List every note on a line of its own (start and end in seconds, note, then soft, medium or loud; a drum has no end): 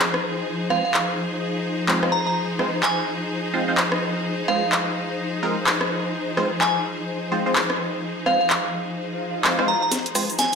0.00 10.55 F3 medium
0.00 10.55 D#4 medium
0.00 10.55 G#4 medium
0.00 10.55 C5 medium
0.00 clap loud
0.14 cross-stick medium
0.70 0.83 G#3 medium
0.70 0.83 C4 medium
0.70 0.83 F4 medium
0.70 0.83 C5 medium
0.70 0.80 F5 medium
0.70 cross-stick medium
0.85 0.91 F5 medium
0.94 clap loud
1.88 2.01 G#3 medium
1.88 2.01 C4 medium
1.88 2.01 F4 medium
1.88 2.01 C5 medium
1.88 clap loud
2.03 2.19 G#3 medium
2.03 2.19 C4 medium
2.03 2.19 F4 medium
2.03 2.19 C5 medium
2.03 cross-stick medium
2.12 2.21 A#5 medium
2.27 2.32 A#5 medium
2.59 2.72 G#3 medium
2.59 2.72 C4 medium
2.59 2.72 F4 medium
2.59 2.73 C5 medium
2.59 cross-stick medium
2.83 2.99 G#5 medium
2.83 clap loud
3.54 3.66 G#3 medium
3.54 3.66 C4 medium
3.54 3.66 F4 medium
3.54 3.66 C5 medium
3.68 3.84 G#3 medium
3.68 3.84 C4 medium
3.68 3.84 F4 medium
3.68 3.84 C5 medium
3.77 clap loud
3.92 cross-stick medium
4.48 4.61 G#3 medium
4.48 4.61 C4 medium
4.48 4.61 F4 medium
4.48 4.61 C5 medium
4.48 4.86 F5 medium
4.48 cross-stick medium
4.72 clap loud
5.43 5.56 G#3 medium
5.43 5.56 C4 medium
5.43 5.56 F4 medium
5.43 5.56 A#4 loud
5.66 clap loud
5.81 cross-stick medium
6.37 6.50 G#3 medium
6.37 6.50 C4 medium
6.37 6.50 F4 medium
6.37 6.50 C5 medium
6.37 cross-stick medium
6.61 6.77 G#5 medium
6.61 clap loud
7.32 7.44 G#3 medium
7.32 7.44 C4 medium
7.32 7.44 F4 medium
7.32 7.44 C5 medium
7.46 7.62 G#3 medium
7.46 7.62 C4 medium
7.46 7.62 F4 medium
7.46 7.62 C5 medium
7.55 clap loud
7.70 cross-stick medium
8.26 8.39 G#3 medium
8.26 8.39 C4 medium
8.26 8.39 F4 medium
8.26 8.39 C5 medium
8.26 8.35 F5 medium
8.26 cross-stick medium
8.41 8.47 F5 medium
8.50 clap loud
8.97 swell medium
9.44 9.57 G#3 medium
9.44 9.57 C4 medium
9.44 9.57 F4 medium
9.44 9.57 C5 medium
9.44 clap loud
9.59 9.75 G#3 medium
9.59 9.75 C4 medium
9.59 9.75 F4 medium
9.59 9.75 C5 medium
9.59 cross-stick medium
9.68 9.77 A#5 medium
9.82 9.88 A#5 medium
9.91 snare soft
9.91 closed hi-hat medium
9.91 riser medium
9.91 cabasa medium
10.06 closed hi-hat medium
10.15 10.28 G#3 medium
10.15 10.28 C4 medium
10.15 10.28 F4 medium
10.15 10.28 C5 medium
10.15 cross-stick medium
10.15 open hi-hat loud
10.15 cabasa medium
10.30 closed hi-hat soft
10.30 cabasa soft
10.38 10.55 G#5 medium
10.38 snare soft
10.38 closed hi-hat medium
10.38 cabasa soft